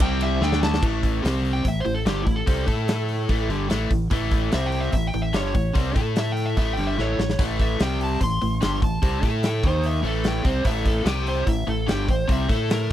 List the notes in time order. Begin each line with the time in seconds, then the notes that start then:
0.00 C2 C3 G3 C4 G5, kick
0.21 E5, snare, ride
0.41 D2 D3 A3 D4 G5, snare
0.53 snare
0.63 A5, snare
0.74 snare
0.82 A1 A2 E3 A3, kick, crash
1.03 kick, open hi-hat
1.23 C2 C3 G3 C4, snare, open hi-hat
1.45 open hi-hat
1.53 G5
1.65 A1 A2 E3 E5, kick, open hi-hat
1.80 C5
1.85 A1 A2 E3, open hi-hat
1.94 A4
2.06 G1 G2 D3 G3 G4, snare, open hi-hat
2.22 E4
2.26 A1 A2 E3, kick, open hi-hat
2.36 A4
2.46 C2 C3 G3 C4, kick, open hi-hat
2.67 A2 A3 E4 A4, kick, open hi-hat
2.88 snare, open hi-hat
3.09 open hi-hat
3.29 A1 A2 E3 A3, kick, open hi-hat
3.49 G1 G2 D3 G3, open hi-hat
3.69 A1 A2 E3 A3, snare, open hi-hat
3.90 A1 A2 E3, kick, open hi-hat
4.11 A1 A2 E3 A3, kick, open hi-hat
4.31 kick, open hi-hat
4.52 C2 C3 G3 C4 E5, snare, open hi-hat
4.66 G5
4.72 open hi-hat
4.80 E5
4.92 A1 A2 E3 E5, kick, open hi-hat
5.07 G5
5.14 A1 A2 E3, open hi-hat
5.22 E5
5.33 G1 G2 D3 G3 C#5, snare, open hi-hat
5.55 A1 A2 E3, kick, open hi-hat
5.74 C2 C3 G3 C4, kick, open hi-hat
5.95 A2 A3 E4 A4, kick, open hi-hat
6.16 E5, snare, open hi-hat
6.32 G5
6.37 open hi-hat
6.46 E5
6.57 A1 A2 E3 A3 E5, kick, open hi-hat
6.73 G1 G5, open hi-hat
6.78 G2 D3 G3
6.87 E5
6.98 A1 A2 E3 A3 C#5, snare
7.18 A1 A2 E3, snare
7.30 snare
7.39 A1 A2 E3 A3, kick, open hi-hat, splash
7.60 E5, kick, open hi-hat
7.80 C2 C3 G3 C4 G5, snare, open hi-hat
8.01 A5, open hi-hat
8.21 A1 A2 E3 C6, kick, open hi-hat
8.42 A1 A2 E3, open hi-hat
8.61 G1 G2 D3 G3 C6, snare, open hi-hat
8.82 A1 A2 E3 A5, kick, open hi-hat
9.02 C2 C3 G3 C4, kick, open hi-hat
9.23 A2 A3 E4 A4, kick, open hi-hat
9.43 G5, snare, open hi-hat
9.63 D#2 D#3 A#3 D#4 C5, kick, open hi-hat
9.84 E5, open hi-hat
10.03 A1 A2 E3 A3 A4, open hi-hat
10.24 G5, snare, open hi-hat
10.44 C2 C3 G3 C4 C5, kick, open hi-hat
10.64 A1 A2 E3 A3 E5, kick, open hi-hat
10.85 A4, kick, open hi-hat
11.05 C2 C3 G3 C4 G5, snare, open hi-hat
11.27 C5, open hi-hat
11.46 A1 A2 E3 E5, kick, open hi-hat
11.67 A1 A2 E3 A4, open hi-hat
11.87 G1 G2 D3 G3 G5, snare, open hi-hat
12.08 A1 A2 E3 C5, kick, open hi-hat
12.28 C2 C3 G3 C4, kick, open hi-hat
12.32 E5
12.49 A2 A3 E4 A4, kick, open hi-hat
12.70 A#4, snare, open hi-hat